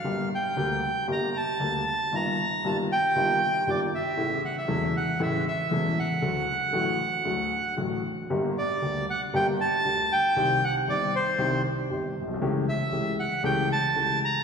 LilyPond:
<<
  \new Staff \with { instrumentName = "Bandoneon" } { \time 4/4 \key d \phrygian \tempo 4 = 116 f''8 g''4. bes''8 a''4. | bes''4 a''8 g''4. d''8 e''8~ | e''8 fis''16 e''8. fis''8 e''8 e''4 fis''8~ | fis''2. r4 |
\key g \minor r8 d''4 fis''8 g''8 a''4 g''8~ | g''8 fis''8 d''8 c''4 r4. | r8 e''4 fis''8 g''8 a''4 bes''8 | }
  \new Staff \with { instrumentName = "Grand piano" } { \clef bass \time 4/4 \key d \phrygian <g,, g, d g bes g'>8 r8 <d, d g bes g'>8 r8 <g,, g, d g bes g'>8 r8 <d, d g bes g'>8 r8 | <g,, g, ees g bes f'>8 r8 <g,, g, ees g bes f'>8 r8 <g,, g, ees g bes f'>8 r8 <g,, g, ees g bes f'>8 r8 | <a,, a, cis e a e'>8 r8 <e,, e, cis e a e'>8 r8 <a,, a, cis e a e'>8 r8 <e,, e, cis e a e'>8 r8 | <d, d fis a fis'>8 r8 <a,, a, d fis a fis'>8 r8 <d, d fis a fis'>8 r8 <a,, a, d fis a fis'>8 r8 |
\key g \minor <g,, g, d g bes g'>8 r8 <d, d g bes g'>8 r8 <g,, g, d g bes g'>8 r8 <d, d g bes g'>8 r8 | <c, c ees g c' g'>8 r8 <g,, g, ees g c' g'>8 r8 <c, c ees g c' g'>8 r8 <g,, g, ees g c' g'>8 r32 bes,,32 b,,32 c,32 | <cis, cis e a cis' g'>8 r8 <cis, cis e a cis' g'>8 r8 <cis, cis e a cis' g'>8 r8 <cis, cis e a cis' g'>8 r8 | }
>>